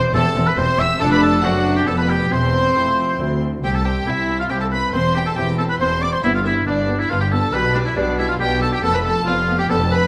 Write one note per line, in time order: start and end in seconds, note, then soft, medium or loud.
0.00 0.11 E2 medium
0.00 0.14 C5 loud
0.14 0.22 E1 loud
0.14 0.33 E2 medium
0.14 0.22 E2 loud
0.14 0.53 C4 medium
0.14 0.22 C4 medium
0.14 0.53 G4 medium
0.14 0.45 A4 loud
0.14 0.48 A4 loud
0.14 0.46 A5 loud
0.35 0.43 E1 loud
0.35 0.55 E2 medium
0.35 0.43 E2 medium
0.35 0.43 C4 medium
0.46 0.57 B4 loud
0.46 0.59 B4 loud
0.46 0.57 B5 medium
0.57 0.65 E1 medium
0.57 0.76 E2 medium
0.57 0.65 E2 loud
0.57 0.65 C4 medium
0.57 0.96 C4 medium
0.57 0.96 G4 medium
0.57 0.79 C5 loud
0.57 0.81 C5 loud
0.57 0.78 C6 loud
0.78 0.87 E1 medium
0.78 0.98 E2 medium
0.78 0.86 E2 loud
0.78 0.87 C4 medium
0.78 1.00 E5 loud
0.78 0.99 E5 loud
0.78 1.00 E6 loud
0.99 1.41 F1 loud
0.99 1.39 F2 medium
0.99 1.41 F2 loud
0.99 1.39 A3 medium
0.99 1.41 D4 loud
0.99 1.40 D4 medium
0.99 1.40 F4 medium
0.99 1.10 A4 loud
0.99 1.11 A4 loud
0.99 1.11 A5 loud
1.10 1.21 B4 medium
1.10 1.22 B4 loud
1.10 1.22 B5 loud
1.21 1.43 A4 medium
1.21 1.46 A4 loud
1.21 1.43 A5 loud
1.43 1.87 F#1 loud
1.43 1.83 F#2 medium
1.43 1.87 F#2 medium
1.43 1.83 A3 medium
1.43 1.83 C4 medium
1.43 1.86 D4 medium
1.43 1.84 D4 medium
1.43 1.76 F#4 loud
1.43 1.76 F#4 medium
1.43 1.76 F#5 loud
1.76 1.80 G4 medium
1.76 1.88 G4 loud
1.76 1.88 G5 medium
1.86 2.30 F1 loud
1.86 2.27 F2 medium
1.86 2.31 F2 medium
1.86 2.31 B3 medium
1.86 2.28 B3 medium
1.86 2.28 D4 medium
1.86 1.91 A4 loud
1.86 1.98 A4 loud
1.86 1.98 A5 loud
1.97 2.09 B4 medium
1.97 2.11 B4 medium
1.97 2.10 B5 loud
2.09 2.31 G4 medium
2.09 2.33 G4 loud
2.09 2.32 G5 loud
2.31 2.74 E1 medium
2.31 2.71 E2 medium
2.31 2.75 E2 medium
2.31 3.41 C4 medium
2.31 3.41 C5 loud
2.31 3.42 C5 loud
2.31 3.39 C6 loud
2.75 3.18 F1 medium
2.75 3.15 F2 medium
2.75 3.19 F2 medium
2.75 3.16 C4 medium
2.75 3.16 E4 medium
3.19 3.62 D2 medium
3.19 3.59 D2 medium
3.19 3.63 D2 medium
3.19 3.59 C4 medium
3.19 3.60 E4 medium
3.63 4.01 C2 loud
3.63 4.02 C2 medium
3.63 3.71 C4 medium
3.63 3.73 G4 loud
3.63 3.76 G4 loud
3.63 3.74 G5 loud
3.74 3.85 A4 medium
3.74 3.84 A4 medium
3.74 3.85 A5 loud
3.85 3.93 C4 medium
3.85 4.06 G4 medium
3.85 4.07 G5 loud
4.06 4.45 C2 medium
4.06 4.15 C4 medium
4.06 4.46 C4 medium
4.06 4.38 E4 medium
4.06 4.39 E4 medium
4.06 4.46 E4 medium
4.06 4.39 E5 loud
4.28 4.36 C4 medium
4.39 4.51 F4 medium
4.39 4.50 F4 medium
4.39 4.44 F5 medium
4.50 4.88 C2 medium
4.50 4.89 C2 medium
4.50 4.58 C4 medium
4.50 4.90 C4 medium
4.50 4.90 E4 medium
4.50 4.60 G4 medium
4.50 4.61 G4 medium
4.50 4.55 G5 loud
4.61 4.71 A4 medium
4.61 4.65 A4 medium
4.61 4.65 A5 loud
4.72 4.80 C4 medium
4.72 4.93 B4 medium
4.72 4.93 B5 loud
4.93 5.32 E1 medium
4.93 5.29 E2 medium
4.93 5.32 E2 medium
4.93 5.02 C4 medium
4.93 5.14 C5 medium
4.93 5.15 C5 loud
4.93 5.15 C6 loud
5.15 5.24 C4 medium
5.15 5.26 G4 medium
5.15 5.26 G5 loud
5.26 5.37 A4 medium
5.26 5.31 A4 medium
5.26 5.38 A5 loud
5.37 5.75 E1 medium
5.37 5.75 E2 medium
5.37 5.72 E2 medium
5.37 5.45 C4 medium
5.37 5.76 C4 medium
5.37 5.77 E4 medium
5.37 5.47 G4 medium
5.37 5.58 G4 medium
5.37 5.59 G5 loud
5.58 5.67 C4 medium
5.58 5.63 A4 medium
5.58 5.69 A4 medium
5.58 5.63 A5 medium
5.69 5.73 B4 medium
5.69 5.74 B4 medium
5.69 5.80 B5 loud
5.79 6.18 E1 medium
5.79 6.18 E2 medium
5.79 6.15 E2 medium
5.79 5.88 C4 medium
5.79 6.20 C4 medium
5.79 6.20 E4 medium
5.79 6.01 C5 loud
5.79 6.03 C5 loud
5.79 6.01 C6 loud
6.01 6.10 C4 medium
6.01 6.12 D5 medium
6.01 6.14 D5 medium
6.01 6.12 D6 loud
6.12 6.16 C5 medium
6.12 6.23 C5 medium
6.12 6.24 C6 medium
6.23 6.62 G1 medium
6.23 6.59 G2 medium
6.23 6.62 G2 medium
6.23 6.31 B3 medium
6.23 6.34 E4 loud
6.23 6.28 E5 loud
6.34 6.45 F4 medium
6.34 6.45 F5 medium
6.44 6.53 B3 medium
6.44 6.66 E4 medium
6.44 6.52 E5 loud
6.66 7.05 G1 medium
6.66 7.05 G2 medium
6.66 7.02 G2 medium
6.66 6.75 B3 medium
6.66 7.07 B3 medium
6.66 6.98 D4 medium
6.66 7.01 D4 medium
6.66 7.07 D4 medium
6.66 6.99 D5 loud
6.88 6.96 B3 medium
6.99 7.10 E4 medium
6.99 7.12 E4 loud
6.99 7.10 E5 medium
7.10 7.48 G1 medium
7.10 7.48 G2 medium
7.10 7.45 G2 medium
7.10 7.18 B3 medium
7.10 7.50 B3 medium
7.10 7.50 D4 medium
7.10 7.14 F4 loud
7.10 7.20 F4 medium
7.10 7.21 F5 loud
7.20 7.25 G4 medium
7.20 7.33 G4 medium
7.20 7.32 G5 loud
7.31 7.39 B3 medium
7.31 7.53 A4 medium
7.31 7.54 A4 medium
7.31 7.53 A5 loud
7.53 7.92 B1 medium
7.53 7.88 B2 medium
7.53 7.92 B2 medium
7.53 7.61 G3 medium
7.53 7.75 B4 loud
7.53 7.74 B4 loud
7.53 7.75 B5 loud
7.74 7.83 G3 medium
7.74 7.79 D4 medium
7.74 7.85 D4 medium
7.74 7.86 D5 loud
7.85 7.90 E4 medium
7.85 7.96 E4 medium
7.85 7.97 E5 loud
7.96 8.35 B1 medium
7.96 8.32 B2 medium
7.96 8.35 B2 loud
7.96 8.04 G3 medium
7.96 8.36 B3 medium
7.96 8.04 D4 medium
7.96 8.18 D4 medium
7.96 8.36 D4 medium
7.96 8.18 D5 loud
8.18 8.26 G3 medium
8.18 8.29 E4 medium
8.18 8.28 E4 medium
8.18 8.29 E5 loud
8.29 8.34 F4 loud
8.29 8.33 F4 loud
8.29 8.40 F5 loud
8.39 8.78 B1 medium
8.39 8.78 B2 medium
8.39 8.75 B2 medium
8.39 8.47 G3 medium
8.39 8.79 B3 medium
8.39 8.80 D4 medium
8.39 8.61 G4 loud
8.39 8.61 G5 loud
8.61 8.69 G3 medium
8.61 8.72 A4 medium
8.61 8.74 A4 loud
8.61 8.72 A5 loud
8.72 8.82 G4 medium
8.72 8.83 G4 medium
8.72 8.84 G5 loud
8.83 9.21 F1 loud
8.83 9.21 F2 loud
8.83 9.18 F2 medium
8.83 8.91 B3 medium
8.83 8.93 A4 loud
8.83 8.94 A4 loud
8.83 8.94 A5 loud
8.94 8.99 B4 medium
8.94 9.05 B4 medium
8.94 9.05 B5 loud
9.04 9.13 B3 medium
9.04 9.14 A4 medium
9.04 9.26 A4 loud
9.04 9.27 A5 loud
9.26 9.64 F1 loud
9.26 9.61 F2 medium
9.26 9.64 F2 loud
9.26 9.34 B3 medium
9.26 9.65 B3 medium
9.26 9.66 D4 medium
9.26 9.58 F4 loud
9.26 9.59 F5 loud
9.48 9.56 B3 medium
9.59 9.71 G4 loud
9.59 9.69 G4 loud
9.59 9.71 G5 loud
9.69 10.07 F1 loud
9.69 10.04 F2 medium
9.69 10.07 F2 medium
9.69 9.77 B3 medium
9.69 10.07 B3 medium
9.69 10.07 D4 medium
9.69 9.90 A4 loud
9.69 9.77 A4 loud
9.69 9.91 A5 loud
9.91 9.99 B3 medium
9.91 10.07 B4 loud
9.91 10.07 B5 loud